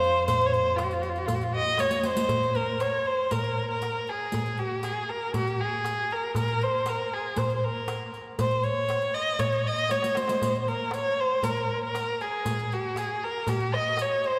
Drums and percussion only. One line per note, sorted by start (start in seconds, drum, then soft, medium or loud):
0.04 riq soft
0.28 riq medium
0.28 darbuka dum medium
0.41 riq soft
0.53 riq soft
0.53 darbuka ka soft
0.78 riq medium
0.78 darbuka tek medium
0.91 riq soft
0.91 darbuka ka soft
1.03 riq soft
1.03 darbuka ka soft
1.16 riq soft
1.28 riq medium
1.28 darbuka dum medium
1.41 riq soft
1.77 riq medium
1.77 darbuka tek medium
1.91 riq medium
2.03 riq medium
2.03 darbuka ka soft
2.17 riq medium
2.29 riq medium
2.29 darbuka dum medium
2.43 riq soft
2.43 darbuka ka soft
2.55 riq soft
2.80 riq soft
2.80 darbuka tek medium
3.07 darbuka ka soft
3.31 riq medium
3.31 darbuka dum medium
3.44 riq soft
3.82 riq soft
3.82 darbuka tek medium
4.07 riq soft
4.32 riq medium
4.32 darbuka dum medium
4.46 riq soft
4.46 darbuka ka soft
4.57 riq soft
4.83 riq soft
4.83 darbuka tek medium
5.09 darbuka ka soft
5.34 riq medium
5.34 darbuka dum medium
5.47 riq soft
5.84 riq soft
5.84 darbuka tek medium
6.11 riq soft
6.35 riq medium
6.35 darbuka dum medium
6.48 riq soft
6.48 darbuka ka soft
6.61 riq soft
6.86 riq soft
6.86 darbuka tek medium
7.13 darbuka ka soft
7.36 riq medium
7.36 darbuka dum loud
7.50 riq soft
7.88 riq soft
7.88 darbuka tek medium
8.14 riq soft
8.39 riq medium
8.39 darbuka dum loud
8.51 riq soft
8.64 riq soft
8.64 darbuka ka soft
8.89 riq soft
8.89 darbuka tek medium
9.02 riq soft
9.02 darbuka ka soft
9.14 riq soft
9.14 darbuka ka soft
9.26 riq soft
9.26 darbuka ka soft
9.39 riq medium
9.39 darbuka dum medium
9.52 riq soft
9.79 riq soft
9.89 riq medium
9.89 darbuka tek medium
10.02 riq medium
10.02 darbuka ka medium
10.15 riq medium
10.15 darbuka tek medium
10.28 riq medium
10.28 darbuka ka medium
10.42 riq medium
10.42 darbuka dum medium
10.54 riq soft
10.54 darbuka ka soft
10.68 riq soft
10.91 riq soft
10.91 darbuka tek medium
11.18 darbuka ka soft
11.43 riq medium
11.43 darbuka dum medium
11.57 riq soft
11.95 riq soft
11.95 darbuka tek medium
12.21 riq soft
12.45 riq medium
12.45 darbuka dum medium
12.58 riq soft
12.58 darbuka ka soft
12.72 riq soft
12.96 riq soft
12.96 darbuka tek medium
13.47 riq medium
13.47 darbuka dum medium
13.60 riq soft
13.97 riq soft
13.97 darbuka tek medium
14.24 riq soft